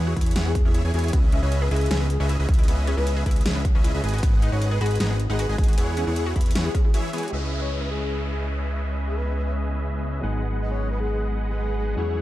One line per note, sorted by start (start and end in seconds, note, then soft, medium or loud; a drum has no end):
0.00 0.15 E2 loud
0.00 0.14 E3 medium
0.00 0.14 E4 medium
0.00 0.14 G#4 medium
0.00 0.14 C#5 medium
0.00 0.14 F#5 medium
0.07 0.09 F#4 loud
0.16 0.34 E3 medium
0.16 0.20 E4 medium
0.16 0.34 E4 medium
0.16 0.34 G#4 medium
0.16 0.34 C#5 medium
0.16 0.34 B5 loud
0.16 kick medium
0.16 closed hi-hat medium
0.21 closed hi-hat medium
0.26 closed hi-hat medium
0.31 closed hi-hat medium
0.36 0.63 E2 loud
0.36 0.52 E3 medium
0.36 0.41 C#4 medium
0.36 0.52 E4 medium
0.36 0.52 G#4 medium
0.36 0.52 C#5 medium
0.36 0.52 F#5 medium
0.36 snare loud
0.36 closed hi-hat medium
0.36 ride soft
0.46 0.51 B3 medium
0.46 0.62 G#4 medium
0.55 kick loud
0.55 closed hi-hat medium
0.65 0.82 E2 loud
0.65 0.82 E3 loud
0.65 0.69 C#4 loud
0.65 0.82 E4 medium
0.65 0.71 G#4 medium
0.65 0.82 G#4 medium
0.65 0.82 C#5 medium
0.65 0.82 E5 loud
0.74 0.78 E4 medium
0.74 0.81 G#4 medium
0.74 closed hi-hat medium
0.84 0.92 E2 loud
0.84 0.92 E3 loud
0.84 0.92 E4 medium
0.84 0.92 G#4 medium
0.84 0.92 C#5 medium
0.84 0.92 G#5 loud
0.94 1.11 E2 medium
0.94 1.11 E3 medium
0.94 1.11 E4 medium
0.94 0.99 F#4 medium
0.94 1.17 G#4 loud
0.94 1.11 G#4 medium
0.94 1.11 C#5 medium
0.94 1.11 G#5 loud
0.94 closed hi-hat soft
0.99 closed hi-hat medium
1.04 1.07 E4 medium
1.04 closed hi-hat soft
1.08 closed hi-hat medium
1.13 1.19 B3 medium
1.13 1.40 C#4 medium
1.13 1.40 G#4 medium
1.13 1.40 B4 medium
1.13 1.40 D#5 medium
1.13 1.40 E5 medium
1.13 kick loud
1.13 closed hi-hat medium
1.13 ride soft
1.32 1.38 C#4 loud
1.32 1.41 E5 loud
1.32 closed hi-hat medium
1.42 1.69 C#2 loud
1.42 1.69 C#4 medium
1.42 1.45 E4 medium
1.42 1.69 G#4 medium
1.42 1.69 B4 medium
1.42 1.59 C#5 medium
1.42 1.69 D#5 medium
1.42 1.69 E5 medium
1.52 closed hi-hat medium
1.62 1.64 G#4 loud
1.62 1.69 B4 medium
1.71 1.89 C#2 loud
1.71 1.88 C#4 medium
1.71 1.73 E4 loud
1.71 2.01 G#4 loud
1.71 1.88 G#4 medium
1.71 1.88 B4 medium
1.71 1.88 D#5 medium
1.71 1.88 E5 medium
1.71 closed hi-hat soft
1.76 closed hi-hat medium
1.81 closed hi-hat soft
1.86 closed hi-hat medium
1.91 2.18 C#2 medium
1.91 1.96 C#4 medium
1.91 2.07 C#4 medium
1.91 2.07 G#4 medium
1.91 2.07 B4 medium
1.91 2.07 D#5 medium
1.91 2.07 E5 medium
1.91 snare loud
1.91 closed hi-hat medium
1.91 ride soft
2.00 2.06 B3 medium
2.10 2.26 G#4 loud
2.10 closed hi-hat medium
2.20 2.37 C#2 loud
2.20 2.23 C#4 loud
2.20 2.37 C#4 loud
2.20 2.37 G#4 medium
2.20 2.37 B4 medium
2.20 2.37 D#5 medium
2.20 2.37 E5 loud
2.29 2.33 E4 medium
2.29 closed hi-hat medium
2.39 2.47 C#2 loud
2.39 2.47 C#4 loud
2.39 2.46 G#4 medium
2.39 2.47 B4 medium
2.39 2.47 D#5 medium
2.39 2.47 E5 loud
2.49 2.66 C#2 loud
2.49 2.66 C#4 medium
2.49 2.54 G#4 medium
2.49 2.66 G#4 medium
2.49 2.66 B4 medium
2.49 2.66 D#5 medium
2.49 2.66 E5 loud
2.49 kick loud
2.49 closed hi-hat soft
2.54 closed hi-hat medium
2.59 2.62 E4 medium
2.59 closed hi-hat soft
2.63 closed hi-hat medium
2.68 2.95 C#2 medium
2.68 2.73 B3 medium
2.68 2.95 C#4 medium
2.68 2.95 G#4 medium
2.68 2.95 B4 medium
2.68 2.95 D#5 medium
2.68 2.95 E5 medium
2.68 closed hi-hat medium
2.68 ride soft
2.87 2.93 C#4 loud
2.87 2.95 G#4 medium
2.87 closed hi-hat medium
2.97 3.24 C#2 loud
2.97 3.24 C#4 medium
2.97 2.99 E4 medium
2.97 3.24 G#4 medium
2.97 3.13 B4 loud
2.97 3.24 B4 medium
2.97 3.24 D#5 medium
2.97 3.24 E5 medium
3.07 closed hi-hat medium
3.16 3.19 G#4 loud
3.16 3.23 B4 medium
3.26 3.44 C#2 loud
3.26 3.43 C#4 medium
3.26 3.28 E4 loud
3.26 3.43 G#4 medium
3.26 3.32 B4 medium
3.26 3.43 B4 medium
3.26 3.43 D#5 medium
3.26 3.43 E5 medium
3.26 kick medium
3.26 closed hi-hat soft
3.31 closed hi-hat medium
3.36 closed hi-hat soft
3.41 closed hi-hat medium
3.45 3.73 C#2 loud
3.45 3.51 C#4 medium
3.45 3.62 C#4 medium
3.45 3.62 G#4 medium
3.45 3.62 B4 medium
3.45 3.62 D#5 medium
3.45 3.62 E5 medium
3.45 snare loud
3.45 closed hi-hat medium
3.45 ride soft
3.55 3.61 B3 medium
3.65 kick loud
3.65 closed hi-hat medium
3.75 3.92 C#2 loud
3.75 3.78 C#4 loud
3.75 3.92 C#4 loud
3.75 3.92 G#4 medium
3.75 3.92 B4 medium
3.75 3.92 D#5 medium
3.75 3.92 E5 loud
3.84 3.88 E4 medium
3.84 closed hi-hat medium
3.94 4.02 C#2 loud
3.94 4.01 C#4 loud
3.94 4.01 G#4 medium
3.94 4.01 B4 medium
3.94 4.01 D#5 medium
3.94 4.01 E5 loud
4.04 4.21 G#1 loud
4.04 4.21 G#3 loud
4.04 4.09 G#4 medium
4.04 4.21 G#4 medium
4.04 4.21 B4 medium
4.04 4.21 D#5 medium
4.04 4.21 G#5 loud
4.04 closed hi-hat soft
4.09 closed hi-hat medium
4.13 4.17 F#4 medium
4.13 closed hi-hat soft
4.18 closed hi-hat medium
4.23 4.50 G#1 loud
4.23 4.50 G#3 medium
4.23 4.28 B3 medium
4.23 4.50 G#4 medium
4.23 4.50 B4 medium
4.23 4.50 D#5 medium
4.23 4.50 F#5 medium
4.23 kick loud
4.23 closed hi-hat medium
4.23 ride soft
4.42 4.48 D#4 loud
4.42 4.50 D#5 medium
4.42 closed hi-hat medium
4.52 4.79 G#1 medium
4.52 4.79 G#3 medium
4.52 4.54 F#4 medium
4.52 4.79 G#4 medium
4.52 4.79 B4 medium
4.52 4.69 C#5 medium
4.52 4.79 D#5 medium
4.52 4.79 F#5 medium
4.62 closed hi-hat medium
4.71 4.74 G#4 loud
4.71 4.79 B4 medium
4.81 4.98 G#1 loud
4.81 4.98 G#3 medium
4.81 4.83 F#4 loud
4.81 5.10 G#4 loud
4.81 4.98 G#4 medium
4.81 4.98 B4 medium
4.81 4.98 D#5 medium
4.81 4.98 B5 medium
4.81 closed hi-hat medium
4.86 closed hi-hat medium
4.91 closed hi-hat soft
4.96 closed hi-hat medium
5.00 5.28 G#1 loud
5.00 5.17 G#3 medium
5.00 5.06 D#4 medium
5.00 5.17 G#4 medium
5.00 5.17 B4 medium
5.00 5.17 D#5 medium
5.00 5.17 F#5 medium
5.00 snare loud
5.00 closed hi-hat medium
5.00 ride soft
5.10 5.16 B3 medium
5.20 closed hi-hat medium
5.29 5.47 G#1 loud
5.29 5.47 G#3 loud
5.29 5.33 D#4 loud
5.29 5.37 G#4 medium
5.29 5.47 G#4 medium
5.29 5.47 B4 medium
5.29 5.47 D#5 medium
5.29 5.47 F#5 loud
5.39 5.43 F#4 medium
5.39 5.55 G#4 medium
5.39 closed hi-hat medium
5.49 5.57 G#1 loud
5.49 5.56 G#3 loud
5.49 5.56 G#4 medium
5.49 5.56 B4 medium
5.49 5.56 D#5 medium
5.49 5.56 G#5 loud
5.58 5.76 G#3 loud
5.58 5.65 G#4 medium
5.58 5.64 G#4 medium
5.58 5.76 G#4 medium
5.58 5.76 B4 medium
5.58 5.76 D#5 medium
5.58 5.76 G#5 loud
5.58 kick loud
5.58 closed hi-hat medium
5.64 closed hi-hat medium
5.68 5.72 F#4 medium
5.68 5.74 G#4 medium
5.68 closed hi-hat soft
5.73 closed hi-hat medium
5.77 6.05 E2 loud
5.77 6.05 E3 medium
5.77 5.83 B3 medium
5.77 6.05 E4 medium
5.77 6.05 G#4 loud
5.77 6.05 G#4 medium
5.77 6.05 C#5 medium
5.77 6.05 F#5 medium
5.77 closed hi-hat medium
5.77 ride soft
5.97 6.03 C#4 loud
5.97 closed hi-hat medium
6.07 6.34 E2 loud
6.07 6.34 E3 medium
6.07 6.09 E4 medium
6.07 6.34 E4 medium
6.07 6.13 G#4 medium
6.07 6.34 G#4 medium
6.07 6.34 C#5 medium
6.07 6.34 F#5 medium
6.16 6.23 G#4 medium
6.16 closed hi-hat medium
6.26 6.28 F#4 loud
6.36 6.53 E2 loud
6.36 6.53 E3 medium
6.36 6.38 E4 loud
6.36 6.53 E4 medium
6.36 6.53 G#4 medium
6.36 6.53 C#5 medium
6.36 6.53 B5 medium
6.36 kick medium
6.36 closed hi-hat soft
6.41 closed hi-hat medium
6.46 closed hi-hat soft
6.51 closed hi-hat medium
6.55 6.69 E2 medium
6.55 6.71 E3 medium
6.55 6.61 C#4 medium
6.55 6.71 E4 medium
6.55 6.71 G#4 medium
6.55 6.71 C#5 medium
6.55 6.71 F#5 medium
6.55 snare loud
6.55 closed hi-hat medium
6.55 ride soft
6.65 6.70 B3 medium
6.65 6.81 G#4 medium
6.75 6.78 C#4 loud
6.75 kick loud
6.75 closed hi-hat medium
6.84 6.88 E4 medium
6.84 6.90 G#4 medium
6.94 7.10 E3 loud
6.94 7.10 E4 loud
6.94 6.98 F#4 medium
6.94 7.00 G#4 medium
6.94 7.10 G#4 medium
6.94 7.10 C#5 loud
6.94 7.10 E5 loud
6.94 closed hi-hat medium
7.13 7.30 E3 loud
7.13 7.17 B3 loud
7.13 7.30 E4 medium
7.13 7.32 G#4 loud
7.13 7.30 G#4 medium
7.13 7.30 C#5 medium
7.13 7.30 G#5 loud
7.13 closed hi-hat medium
7.18 closed hi-hat medium
7.23 7.27 F#4 medium
7.23 closed hi-hat soft
7.28 10.20 G#3 medium
7.28 closed hi-hat medium
7.32 10.21 C#2 medium
7.32 10.20 C#3 medium
7.32 12.22 G#3 medium
7.32 11.93 B3 medium
7.32 10.20 C#4 medium
7.32 10.21 C#4 medium
7.32 10.20 E4 medium
7.32 10.21 E4 medium
7.32 10.21 G#4 medium
7.32 10.21 B4 medium
7.32 10.22 B4 medium
7.32 10.21 D#5 medium
7.32 10.21 E5 medium
7.32 downlifter medium
7.52 7.60 E5 medium
7.62 7.78 C#5 medium
7.81 7.89 B4 medium
7.91 8.20 G#4 medium
8.05 closed hi-hat medium
8.10 closed hi-hat medium
8.29 8.46 G#4 medium
8.83 closed hi-hat medium
8.87 closed hi-hat medium
9.07 9.15 G#4 medium
9.07 closed hi-hat medium
9.17 9.33 B4 medium
9.26 closed hi-hat medium
9.36 9.42 B4 medium
9.46 9.52 B4 medium
9.60 closed hi-hat medium
9.65 closed hi-hat medium
10.04 closed hi-hat medium
10.21 11.95 G#1 medium
10.21 11.95 D#3 medium
10.21 11.94 F#3 medium
10.21 11.95 G#3 medium
10.21 11.94 B3 medium
10.21 11.95 D#4 medium
10.21 12.22 F#4 medium
10.21 11.95 G#4 medium
10.21 11.95 B4 medium
10.21 11.95 D#5 medium
10.21 11.95 F#5 medium
10.21 closed hi-hat soft
10.25 11.96 G#4 medium
10.25 closed hi-hat medium
10.38 closed hi-hat medium
10.42 closed hi-hat medium
10.62 10.70 D#5 medium
10.62 closed hi-hat medium
10.71 10.88 C#5 medium
10.81 closed hi-hat medium
10.91 10.98 B4 medium
11.00 11.30 G#4 medium
11.00 closed hi-hat soft
11.05 closed hi-hat medium
11.10 closed hi-hat soft
11.15 closed hi-hat medium
11.20 closed hi-hat medium
11.39 closed hi-hat medium
11.49 11.56 G#4 medium
11.58 11.75 G#4 medium
11.58 closed hi-hat medium
11.78 11.84 G#4 medium
11.78 closed hi-hat soft
11.83 closed hi-hat medium
11.87 11.94 G#4 medium
11.87 closed hi-hat soft
11.93 12.22 F#3 medium
11.93 12.22 C#4 medium
11.93 closed hi-hat medium
11.97 12.22 E2 medium
11.97 12.22 E3 medium
11.97 12.22 E4 medium
11.97 12.22 G#4 medium
11.97 12.22 C#5 medium
11.97 12.22 F#5 medium
11.97 closed hi-hat medium